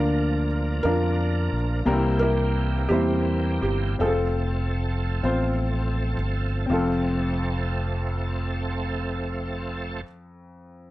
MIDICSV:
0, 0, Header, 1, 5, 480
1, 0, Start_track
1, 0, Key_signature, -1, "major"
1, 0, Tempo, 684932
1, 1302, Time_signature, 6, 3, 24, 8
1, 2279, Tempo, 749064
1, 2759, Tempo, 806452
1, 3239, Tempo, 887574
1, 3719, Tempo, 1003344
1, 4199, Tempo, 1075269
1, 6078, End_track
2, 0, Start_track
2, 0, Title_t, "Felt piano"
2, 0, Program_c, 0, 0
2, 0, Note_on_c, 0, 58, 51
2, 0, Note_on_c, 0, 62, 46
2, 0, Note_on_c, 0, 65, 68
2, 321, Note_off_c, 0, 65, 0
2, 565, Note_off_c, 0, 58, 0
2, 566, Note_off_c, 0, 62, 0
2, 582, Note_on_c, 0, 70, 96
2, 596, Note_on_c, 0, 65, 61
2, 597, Note_on_c, 0, 62, 65
2, 1091, Note_off_c, 0, 70, 0
2, 1277, Note_off_c, 0, 62, 0
2, 1277, Note_off_c, 0, 65, 0
2, 1536, Note_on_c, 0, 70, 99
2, 1551, Note_on_c, 0, 67, 63
2, 1555, Note_on_c, 0, 64, 68
2, 1998, Note_off_c, 0, 70, 0
2, 2012, Note_off_c, 0, 67, 0
2, 2023, Note_on_c, 0, 67, 79
2, 2026, Note_off_c, 0, 64, 0
2, 2036, Note_on_c, 0, 64, 58
2, 2040, Note_on_c, 0, 58, 58
2, 2507, Note_off_c, 0, 67, 0
2, 2516, Note_on_c, 0, 67, 70
2, 2737, Note_off_c, 0, 64, 0
2, 2739, Note_off_c, 0, 58, 0
2, 2764, Note_on_c, 0, 69, 79
2, 2766, Note_off_c, 0, 67, 0
2, 2774, Note_on_c, 0, 65, 53
2, 2775, Note_on_c, 0, 60, 55
2, 3933, Note_off_c, 0, 69, 0
2, 3937, Note_off_c, 0, 65, 0
2, 3938, Note_off_c, 0, 60, 0
2, 4206, Note_on_c, 0, 65, 65
2, 5690, Note_off_c, 0, 65, 0
2, 6078, End_track
3, 0, Start_track
3, 0, Title_t, "Grand piano"
3, 0, Program_c, 1, 0
3, 0, Control_c, 1, 64, 127
3, 0, Note_on_c, 1, 50, 58
3, 0, Note_on_c, 1, 62, 65
3, 0, Note_on_c, 1, 65, 61
3, 0, Note_on_c, 1, 70, 73
3, 481, Note_off_c, 1, 62, 0
3, 485, Note_off_c, 1, 65, 0
3, 486, Note_off_c, 1, 70, 0
3, 568, Note_off_c, 1, 50, 0
3, 594, Note_on_c, 1, 62, 59
3, 597, Note_on_c, 1, 65, 53
3, 606, Note_on_c, 1, 70, 63
3, 1193, Note_off_c, 1, 62, 0
3, 1195, Note_off_c, 1, 65, 0
3, 1199, Note_off_c, 1, 70, 0
3, 1299, Note_on_c, 1, 55, 77
3, 1303, Note_on_c, 1, 58, 76
3, 1304, Note_on_c, 1, 60, 70
3, 1307, Note_on_c, 1, 48, 64
3, 1308, Note_on_c, 1, 62, 58
3, 1310, Note_on_c, 1, 70, 87
3, 1311, Control_c, 1, 64, 0
3, 1351, Note_off_c, 1, 62, 0
3, 1351, Note_on_c, 1, 64, 71
3, 1440, Control_c, 1, 64, 127
3, 1912, Note_off_c, 1, 55, 0
3, 1914, Note_off_c, 1, 58, 0
3, 1914, Note_off_c, 1, 60, 0
3, 1918, Note_off_c, 1, 70, 0
3, 1938, Note_off_c, 1, 64, 0
3, 2003, Note_off_c, 1, 48, 0
3, 2033, Note_on_c, 1, 55, 57
3, 2036, Note_on_c, 1, 58, 52
3, 2038, Note_on_c, 1, 60, 54
3, 2039, Note_on_c, 1, 64, 54
3, 2047, Note_on_c, 1, 72, 64
3, 2647, Note_off_c, 1, 55, 0
3, 2648, Note_off_c, 1, 58, 0
3, 2649, Note_off_c, 1, 60, 0
3, 2649, Note_off_c, 1, 64, 0
3, 2653, Note_off_c, 1, 72, 0
3, 2752, Note_on_c, 1, 60, 61
3, 2758, Note_on_c, 1, 65, 57
3, 2764, Note_on_c, 1, 68, 58
3, 2768, Control_c, 1, 64, 0
3, 2803, Note_on_c, 1, 69, 69
3, 2806, Note_off_c, 1, 68, 0
3, 2888, Control_c, 1, 64, 127
3, 3359, Note_off_c, 1, 60, 0
3, 3362, Note_off_c, 1, 65, 0
3, 3382, Note_off_c, 1, 69, 0
3, 3469, Note_on_c, 1, 60, 62
3, 3471, Note_on_c, 1, 65, 59
3, 3478, Note_on_c, 1, 72, 71
3, 4079, Note_off_c, 1, 60, 0
3, 4080, Note_off_c, 1, 65, 0
3, 4083, Note_off_c, 1, 72, 0
3, 4181, Note_on_c, 1, 60, 59
3, 4199, Note_on_c, 1, 41, 62
3, 4200, Note_on_c, 1, 65, 59
3, 4205, Control_c, 1, 64, 0
3, 4214, Note_on_c, 1, 69, 70
3, 4280, Control_c, 1, 64, 127
3, 5665, Note_off_c, 1, 60, 0
3, 5683, Note_off_c, 1, 41, 0
3, 5683, Note_off_c, 1, 65, 0
3, 5698, Note_off_c, 1, 69, 0
3, 6078, End_track
4, 0, Start_track
4, 0, Title_t, "Tonewheel organ"
4, 0, Program_c, 2, 16
4, 0, Note_on_c, 2, 53, 55
4, 0, Note_on_c, 2, 58, 47
4, 0, Note_on_c, 2, 62, 51
4, 0, Note_on_c, 2, 70, 61
4, 1274, Note_off_c, 2, 53, 0
4, 1275, Note_off_c, 2, 62, 0
4, 1276, Note_off_c, 2, 58, 0
4, 1296, Note_off_c, 2, 70, 0
4, 1299, Note_on_c, 2, 58, 58
4, 1303, Note_on_c, 2, 52, 65
4, 1303, Note_on_c, 2, 60, 63
4, 1306, Note_on_c, 2, 67, 73
4, 2732, Note_off_c, 2, 58, 0
4, 2734, Note_off_c, 2, 52, 0
4, 2734, Note_off_c, 2, 60, 0
4, 2735, Note_off_c, 2, 67, 0
4, 2757, Note_on_c, 2, 57, 50
4, 2758, Note_on_c, 2, 53, 57
4, 2759, Note_on_c, 2, 60, 46
4, 2759, Note_on_c, 2, 67, 47
4, 2797, Note_on_c, 2, 69, 58
4, 2803, Note_off_c, 2, 67, 0
4, 4179, Note_off_c, 2, 53, 0
4, 4179, Note_off_c, 2, 57, 0
4, 4180, Note_off_c, 2, 60, 0
4, 4189, Note_off_c, 2, 69, 0
4, 4193, Note_on_c, 2, 57, 58
4, 4195, Note_on_c, 2, 53, 63
4, 4195, Note_on_c, 2, 69, 71
4, 4196, Note_on_c, 2, 60, 57
4, 5676, Note_off_c, 2, 57, 0
4, 5678, Note_off_c, 2, 53, 0
4, 5679, Note_off_c, 2, 69, 0
4, 5680, Note_off_c, 2, 60, 0
4, 6078, End_track
5, 0, Start_track
5, 0, Title_t, "Fingered electric bass"
5, 0, Program_c, 3, 33
5, 0, Note_on_c, 3, 38, 86
5, 566, Note_off_c, 3, 38, 0
5, 594, Note_on_c, 3, 41, 90
5, 1038, Note_off_c, 3, 41, 0
5, 1067, Note_on_c, 3, 34, 70
5, 1284, Note_off_c, 3, 34, 0
5, 1305, Note_on_c, 3, 36, 90
5, 2002, Note_off_c, 3, 36, 0
5, 2032, Note_on_c, 3, 40, 82
5, 2491, Note_off_c, 3, 40, 0
5, 2517, Note_on_c, 3, 31, 70
5, 2740, Note_off_c, 3, 31, 0
5, 2757, Note_on_c, 3, 29, 85
5, 3450, Note_off_c, 3, 29, 0
5, 3470, Note_on_c, 3, 33, 88
5, 3931, Note_off_c, 3, 33, 0
5, 3947, Note_on_c, 3, 31, 68
5, 4178, Note_off_c, 3, 31, 0
5, 4197, Note_on_c, 3, 29, 77
5, 5681, Note_off_c, 3, 29, 0
5, 6078, End_track
0, 0, End_of_file